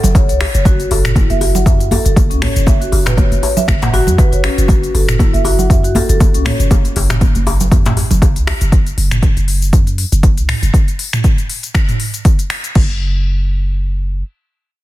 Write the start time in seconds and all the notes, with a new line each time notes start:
0.03 F#1, closed hi-hat, low conga, shaker
0.15 C#5, kick, closed hi-hat, djembe tone, shaker
0.29 C#2 C#5, closed hi-hat, shaker
0.41 finger snap, open hi-hat, djembe tone
0.54 F#1 C#5, closed hi-hat, shaker
0.65 F#4, kick, closed hi-hat, high conga, djembe tone, low conga, shaker
0.80 closed hi-hat, shaker
0.91 F#1 A4, open hi-hat, djembe tone
1.05 finger snap, closed hi-hat, mid tom, shaker
1.15 E4, kick, closed hi-hat, high conga, djembe tone, shaker
1.30 F#1 E5, closed hi-hat, high conga, shaker
1.41 F#4, open hi-hat, djembe tone
1.55 F#5, low conga, shaker
1.66 F#2 E5, kick, closed hi-hat, djembe tone, shaker
1.80 closed hi-hat, shaker
1.91 A4, open hi-hat, high conga, djembe tone
2.05 F#1 A4, closed hi-hat, shaker
2.16 kick, closed hi-hat, djembe tone, high conga, shaker
2.30 C#2 C#4, closed hi-hat, shaker
2.42 C#5, finger snap, mid tom, open hi-hat, djembe tone, high conga
2.56 F#1, closed hi-hat, shaker
2.67 E5, kick, closed hi-hat, djembe tone, high conga, shaker
2.81 F#4, closed hi-hat, shaker
2.92 F#1, open hi-hat, djembe tone
3.06 B4, finger snap, mid tom, djembe slap, shaker
3.17 C#5, kick, closed hi-hat, djembe tone, high conga, shaker
3.32 F#1, closed hi-hat, high conga, shaker
3.43 C#5, open hi-hat, djembe tone
3.57 E5, low conga, shaker
3.68 F#1, finger snap, kick, closed hi-hat, djembe tone, high conga, shaker
3.82 F#5, closed hi-hat, mid tom, djembe slap, high conga, shaker
3.93 F#4, open hi-hat, djembe tone
4.07 F#2, closed hi-hat, low conga, shaker
4.18 B4, kick, closed hi-hat, djembe tone, shaker
4.32 F#1 C#5, closed hi-hat, shaker
4.44 C#4, finger snap, open hi-hat, djembe tone
4.58 F#1 F#4, closed hi-hat, shaker
4.68 F#4, kick, closed hi-hat, djembe tone, high conga, low conga, shaker
4.84 closed hi-hat, shaker
4.94 F#1 A4, open hi-hat, djembe tone
5.09 finger snap, mid tom, shaker
5.19 E4, kick, closed hi-hat, high conga, djembe tone, shaker
5.33 F#1 E5, closed hi-hat, high conga, shaker
5.45 F#4, open hi-hat, djembe tone
5.59 F#5, low conga, shaker
5.70 F#2 E5, kick, closed hi-hat, djembe tone, shaker
5.84 F#4, closed hi-hat, shaker
5.95 A4, open hi-hat, high conga, djembe tone
6.09 F#1 A4, closed hi-hat, shaker
6.20 kick, closed hi-hat, djembe tone, high conga, shaker
6.34 C#2 C#4, closed hi-hat, shaker
6.45 C#5, finger snap, mid tom, open hi-hat, djembe tone, high conga
6.60 F#1, closed hi-hat, shaker
6.71 kick, closed hi-hat, djembe tone, high conga, shaker
6.85 closed hi-hat, shaker
6.96 F#1, open hi-hat, djembe tone
7.10 finger snap, mid tom, djembe slap, shaker
7.21 kick, closed hi-hat, djembe tone, high conga, shaker
7.35 F#1, closed hi-hat, high conga, shaker
7.47 open hi-hat, djembe tone
7.61 low conga, shaker
7.72 F#2, kick, closed hi-hat, djembe tone, high conga, shaker
7.86 closed hi-hat, mid tom, djembe slap, high conga, shaker
7.97 open hi-hat, djembe tone
8.11 F#1, closed hi-hat, low conga, shaker
8.22 kick, closed hi-hat, djembe tone, shaker
8.36 C#2, closed hi-hat, shaker
8.47 finger snap, open hi-hat, djembe tone
8.61 F#1, closed hi-hat, shaker
8.72 kick, closed hi-hat, shaker
8.86 closed hi-hat, shaker
8.98 F#1, open hi-hat
9.11 finger snap, closed hi-hat, mid tom, shaker
9.23 kick, closed hi-hat, shaker
9.37 F#1, closed hi-hat, shaker
9.48 open hi-hat
9.62 shaker
9.73 F#2, kick, closed hi-hat, shaker
9.87 closed hi-hat, shaker
9.98 open hi-hat
10.12 F#1, closed hi-hat, shaker
10.23 kick, closed hi-hat, shaker
10.37 C#2, closed hi-hat, shaker
10.49 finger snap, mid tom, open hi-hat
10.63 F#1, closed hi-hat, shaker
10.74 kick, closed hi-hat, shaker
10.88 closed hi-hat, shaker
10.99 open hi-hat
11.13 finger snap, mid tom, shaker
11.24 kick, closed hi-hat, shaker
11.38 closed hi-hat, shaker
11.50 open hi-hat
11.63 closed hi-hat, shaker
11.75 finger snap, kick, closed hi-hat, shaker
11.89 closed hi-hat, mid tom, shaker
12.00 open hi-hat
12.14 closed hi-hat, shaker
12.25 kick, closed hi-hat, shaker
12.39 closed hi-hat, shaker
12.50 finger snap, open hi-hat
12.64 closed hi-hat, shaker
12.75 F#1, kick, crash